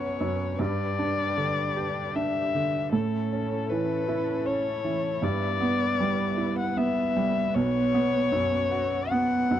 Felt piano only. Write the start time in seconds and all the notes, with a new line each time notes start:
Already playing: B1 F#2 C#4 F#4
0.21 F#2
0.59 G2
0.99 D4
1.37 D3
1.76 G4
2.15 D4
2.55 D3
2.92 A2
3.33 C#4
3.71 E3
4.08 E4
4.45 C#4
4.84 E3
5.22 G2
5.61 B3
6.00 G3
6.37 E4
6.77 B3
7.17 G3
7.55 B1
7.94 B3
8.32 F#2
8.71 F#4
9.11 B3
9.51 F#2